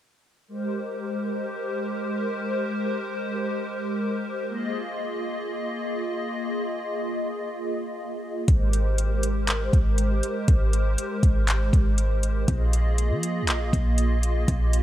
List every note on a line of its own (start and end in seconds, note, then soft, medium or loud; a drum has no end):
0.48 4.44 G#3 medium
0.48 4.44 G4 medium
0.48 4.44 A#4 medium
0.48 4.44 C5 medium
4.48 8.44 A#3 medium
4.48 8.44 F4 medium
4.48 8.44 G#4 medium
4.48 8.44 D#5 medium
8.48 9.69 G#1 loud
8.48 12.44 G#3 medium
8.48 12.44 G4 medium
8.48 12.44 A#4 medium
8.48 12.44 C5 medium
8.48 kick loud
8.48 closed hi-hat medium
8.73 closed hi-hat medium
8.98 closed hi-hat medium
9.23 closed hi-hat medium
9.48 clap loud
9.48 closed hi-hat medium
9.73 10.21 G#1 loud
9.73 kick medium
9.73 closed hi-hat medium
9.98 closed hi-hat medium
10.23 closed hi-hat medium
10.48 10.96 G#1 loud
10.48 kick loud
10.48 closed hi-hat medium
10.73 closed hi-hat medium
10.98 closed hi-hat medium
11.23 11.71 G#1 loud
11.23 kick medium
11.23 closed hi-hat medium
11.48 clap loud
11.48 closed hi-hat medium
11.73 12.45 G#1 loud
11.73 kick medium
11.73 closed hi-hat medium
11.98 closed hi-hat medium
12.23 closed hi-hat medium
12.48 13.12 A#1 loud
12.48 14.83 A#3 medium
12.48 14.83 F4 medium
12.48 14.46 G#4 medium
12.48 14.83 D#5 medium
12.48 kick loud
12.48 closed hi-hat medium
12.73 closed hi-hat medium
12.98 closed hi-hat medium
13.11 13.43 F3 loud
13.23 closed hi-hat medium
13.42 13.72 A#1 loud
13.48 clap loud
13.48 closed hi-hat medium
13.73 14.45 A#1 loud
13.73 kick medium
13.73 closed hi-hat medium
13.98 closed hi-hat medium
14.23 closed hi-hat medium
14.48 14.83 A#1 loud
14.48 14.83 G4 medium
14.48 kick loud
14.48 closed hi-hat medium
14.73 closed hi-hat medium